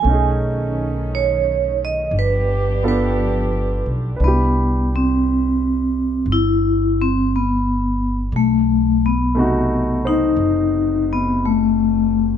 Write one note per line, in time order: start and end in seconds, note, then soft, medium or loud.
0.00 2.10 A3 soft
0.00 0.28 G#5 medium
0.04 2.07 B1 medium
0.04 2.10 D#3 medium
0.04 2.12 C#4 soft
0.04 2.10 C#4 medium
0.10 2.14 D#4 soft
0.10 2.15 G#4 medium
1.15 1.76 C#5 medium
1.85 2.13 D#5 medium
2.11 3.82 G1 medium
2.11 4.18 F3 medium
2.11 4.19 B3 medium
2.11 4.18 D4 medium
2.11 4.18 G4 medium
2.19 2.81 B4 medium
2.83 4.21 B3 soft
2.83 4.19 D4 soft
2.83 4.21 F4 soft
2.83 4.21 A4 soft
2.88 3.85 B4 medium
3.86 4.18 B1 medium
4.16 6.23 C2 medium
4.16 8.33 D4 soft
4.16 8.31 B4 soft
4.23 4.87 B3 medium
4.23 8.35 E4 soft
4.28 8.37 G4 soft
4.96 6.34 C4 medium
6.26 8.28 G1 medium
6.32 7.01 E4 medium
7.01 7.31 C4 medium
7.36 8.15 B3 medium
8.32 10.34 B1 medium
8.36 9.05 A3 medium
9.06 10.09 B3 medium
9.35 12.38 C3 soft
9.35 12.38 A3 medium
9.35 10.07 D#4 soft
9.39 12.38 F#4 medium
10.05 11.04 D#4 medium
10.05 12.38 D#4 soft
10.05 12.38 C5 soft
10.37 12.38 F#1 medium
11.13 11.44 B3 medium
11.45 12.25 A3 medium